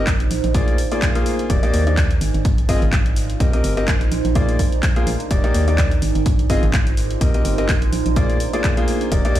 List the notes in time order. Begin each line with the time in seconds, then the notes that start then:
Already playing: G1 C5
0.07 kick, clap, closed hi-hat
0.20 closed hi-hat
0.31 A#1, open hi-hat
0.44 A#1, closed hi-hat
0.54 A#3 F4 G#4 D5, kick, closed hi-hat
0.68 closed hi-hat
0.78 open hi-hat
0.92 A#3 F4 G#4 D5, closed hi-hat
1.02 kick, clap, closed hi-hat
1.15 A#3 F4 G#4 F5, closed hi-hat
1.26 open hi-hat
1.39 closed hi-hat
1.50 D#1 A#3 D#4 G4 D5, kick, closed hi-hat
1.63 A#3 D#4 G4 D5, closed hi-hat
1.74 D#2, open hi-hat
1.87 A#3 D#4 G4 D5, closed hi-hat
1.97 kick, clap, closed hi-hat
2.11 closed hi-hat
2.21 G#1 F4, open hi-hat
2.34 G#1, closed hi-hat
2.42 C5, kick, closed hi-hat
2.58 closed hi-hat
2.69 C4 F4 G#4 D#5, kick, open hi-hat
2.82 G#1, closed hi-hat
2.93 kick, clap, closed hi-hat
3.06 closed hi-hat
3.16 open hi-hat
3.30 closed hi-hat
3.40 C2 C4 G4 A#4 D#5, kick, closed hi-hat
3.53 C4 G4 A#4 D#5, closed hi-hat
3.64 G1, open hi-hat
3.77 C4 G4 A#4 D#5, closed hi-hat
3.88 kick, clap, closed hi-hat
4.01 closed hi-hat
4.12 A#1, open hi-hat
4.25 A#1, closed hi-hat
4.35 A#3 F4 G#4 D5, kick, closed hi-hat
4.49 closed hi-hat
4.59 kick, open hi-hat
4.72 closed hi-hat
4.83 kick, clap, closed hi-hat
4.96 A#3 F4 G#4 F5, closed hi-hat
5.07 A#1, open hi-hat
5.20 closed hi-hat
5.31 D#1 A#3 D#4 G4 D5, kick, closed hi-hat
5.44 A#3 D#4 G4 D5, closed hi-hat
5.54 D#2, open hi-hat
5.68 A#3 D#4 G4 D5, closed hi-hat
5.78 kick, clap, closed hi-hat
5.91 closed hi-hat
6.02 G#1 F4, open hi-hat
6.15 G#1 C5, closed hi-hat
6.26 kick, closed hi-hat
6.39 closed hi-hat
6.50 C4 F4 G#4 D#5, kick, open hi-hat
6.63 G#1, closed hi-hat
6.74 kick, clap, closed hi-hat
6.87 closed hi-hat
6.97 open hi-hat
7.11 closed hi-hat
7.21 C2 C4 G4 A#4 D#5, kick, closed hi-hat
7.34 C4 G4 A#4 D#5, closed hi-hat
7.45 G1, open hi-hat
7.58 C4 G4 A#4 D#5, closed hi-hat
7.69 kick, clap, closed hi-hat
7.82 closed hi-hat
7.93 A#1, open hi-hat
8.06 A#1, closed hi-hat
8.16 A#3 F4 G#4 D5, kick, closed hi-hat
8.30 closed hi-hat
8.40 open hi-hat
8.53 A#3 F4 G#4 D5, closed hi-hat
8.64 kick, clap, closed hi-hat
8.77 A#3 F4 G#4 F5, closed hi-hat
8.88 open hi-hat
9.01 closed hi-hat
9.12 D#1 A#3 D#4 G4 D5, kick, closed hi-hat
9.25 A#3 D#4 G4 D5, closed hi-hat
9.35 D#2, open hi-hat